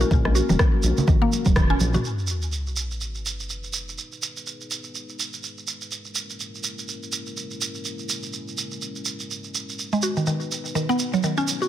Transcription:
0.00 2.01 G#3 medium
0.00 2.01 A#3 medium
0.00 2.01 C#4 medium
0.00 0.10 F#4 medium
0.00 2.01 A#4 medium
0.00 muted conga medium
0.00 shekere soft
0.11 0.41 A#1 loud
0.11 2.03 F#4 medium
0.11 kick loud
0.11 mid tom medium
0.11 low conga medium
0.11 shekere soft
0.25 0.35 G#3 medium
0.25 cross-stick medium
0.25 muted conga medium
0.35 0.49 F#4 medium
0.35 shekere loud
0.49 0.56 E1 medium
0.49 0.58 D#3 medium
0.49 muted conga soft
0.49 high conga loud
0.49 shekere soft
0.59 0.72 D#3 medium
0.59 kick loud
0.59 cross-stick loud
0.59 shekere soft
0.74 high conga medium
0.83 0.93 A#1 loud
0.83 muted conga medium
0.83 shekere medium
0.97 low conga loud
0.97 shekere medium
1.07 1.17 A#1 medium
1.07 1.20 D#3 medium
1.07 kick loud
1.07 muted conga soft
1.07 shekere soft
1.22 1.31 A#3 loud
1.32 muted conga soft
1.32 shekere medium
1.45 1.74 E1 loud
1.45 1.51 F#3 medium
1.45 kick medium
1.45 shekere medium
1.56 1.69 D#3 medium
1.56 kick loud
1.56 cross-stick loud
1.56 muted conga soft
1.56 high conga medium
1.56 shekere soft
1.70 1.79 C#4 loud
1.80 1.97 A#1 medium
1.80 high conga medium
1.80 shekere medium
1.94 2.04 F#4 medium
1.94 mid tom medium
1.94 muted conga medium
1.94 shekere medium
2.04 11.68 G#3 medium
2.04 5.88 B3 medium
2.04 5.88 D#4 medium
2.04 3.96 F#4 medium
2.04 5.88 B4 medium
2.04 sub drop medium
2.04 shekere soft
2.19 shekere soft
2.27 shekere medium
2.42 shekere soft
2.52 shekere soft
2.67 shekere soft
2.76 shekere medium
2.91 shekere soft
3.01 shekere soft
3.15 shekere soft
3.26 shekere medium
3.40 shekere soft
3.49 shekere medium
3.64 shekere soft
3.73 shekere medium
3.89 shekere soft
3.98 5.90 G#4 medium
3.98 shekere soft
4.12 shekere soft
4.22 shekere loud
4.36 shekere soft
4.47 shekere medium
4.61 shekere soft
4.71 shekere medium
4.84 shekere soft
4.95 shekere soft
5.09 shekere soft
5.19 shekere medium
5.33 shekere soft
5.43 shekere soft
5.58 shekere soft
5.67 shekere medium
5.81 shekere soft
5.91 9.75 A#3 medium
5.91 9.75 C#4 medium
5.91 9.75 E4 medium
5.91 9.75 A#4 medium
5.91 shekere medium
6.05 shekere soft
6.15 shekere medium
6.30 shekere soft
6.40 shekere medium
6.55 shekere soft
6.63 shekere medium
6.78 shekere soft
6.88 shekere medium
7.03 shekere soft
7.12 shekere loud
7.26 shekere soft
7.37 shekere medium
7.51 shekere soft
7.61 shekere loud
7.74 shekere soft
7.85 shekere medium
7.99 shekere soft
8.09 shekere loud
8.23 shekere soft
8.33 shekere medium
8.48 shekere soft
8.58 shekere medium
8.71 shekere soft
8.82 shekere medium
8.95 shekere soft
9.05 shekere loud
9.20 shekere soft
9.31 shekere soft
9.44 shekere soft
9.55 shekere loud
9.69 shekere soft
9.79 11.68 B3 medium
9.79 11.68 D#4 medium
9.79 11.68 F#4 medium
9.79 11.68 B4 medium
9.79 shekere medium
9.92 10.02 G#3 medium
9.92 shekere soft
10.02 10.16 F#4 medium
10.02 shekere medium
10.16 10.26 D#3 medium
10.16 shekere soft
10.26 10.40 D#3 medium
10.26 shekere medium
10.40 shekere soft
10.51 shekere medium
10.65 shekere soft
10.75 10.88 D#3 medium
10.75 shekere soft
10.89 10.99 B3 loud
10.89 shekere soft
10.99 shekere medium
11.13 11.19 F#3 medium
11.13 shekere soft
11.23 11.37 D#3 medium
11.23 shekere medium
11.37 11.47 C#4 loud
11.37 shekere soft
11.48 shekere loud
11.62 11.68 F#4 medium
11.62 shekere soft

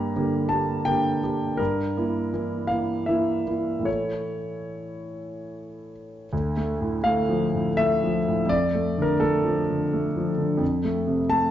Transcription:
0.00 1.59 G2 medium
0.00 0.11 A#3 soft
0.00 0.12 G4 soft
0.00 0.50 A#5 medium
0.16 0.47 D3 soft
0.16 0.48 A#3 soft
0.16 0.48 G4 soft
0.49 0.83 A#3 soft
0.49 0.83 G4 soft
0.49 0.85 A5 medium
0.85 1.20 D3 soft
0.85 1.20 A#3 soft
0.85 1.20 G4 soft
0.85 1.59 G5 medium
1.24 1.56 A#3 soft
1.24 1.56 G4 soft
1.57 1.95 G2 soft
1.57 2.69 A#4 medium
1.97 2.29 A#3 soft
1.97 2.30 E4 soft
2.33 2.66 E3 soft
2.33 2.66 A#3 soft
2.33 2.67 E4 soft
2.67 3.03 A#3 soft
2.67 3.04 E4 soft
2.67 3.06 F5 medium
3.06 3.43 E3 soft
3.06 3.43 A#3 soft
3.06 3.43 E4 soft
3.06 3.86 E5 medium
3.47 3.83 A#3 soft
3.47 3.83 E4 soft
3.79 6.24 A2 soft
3.79 6.26 E3 soft
3.84 6.27 A3 soft
3.84 6.28 E4 soft
3.84 5.92 C#5 medium
6.33 8.46 D2 medium
6.57 6.96 A3 soft
6.81 7.20 A2 soft
7.04 7.44 A3 soft
7.04 7.77 F5 medium
7.29 7.68 F3 soft
7.54 7.93 A2 soft
7.77 8.16 A3 soft
7.77 8.49 E5 medium
8.04 8.41 F3 soft
8.28 8.51 A2 soft
8.46 10.55 F2 medium
8.46 9.03 D5 loud
8.75 9.12 A3 soft
8.98 9.36 D3 soft
8.98 9.20 A#4 medium
9.20 9.60 A3 soft
9.20 10.61 A4 medium
9.45 9.83 F3 soft
9.70 10.07 D3 soft
9.93 10.30 A3 soft
10.17 10.53 F3 soft
10.38 10.61 D3 soft
10.57 11.51 F2 medium
10.85 11.21 A3 soft
11.07 11.44 C3 soft
11.29 11.51 A3 soft
11.29 11.51 A5 medium

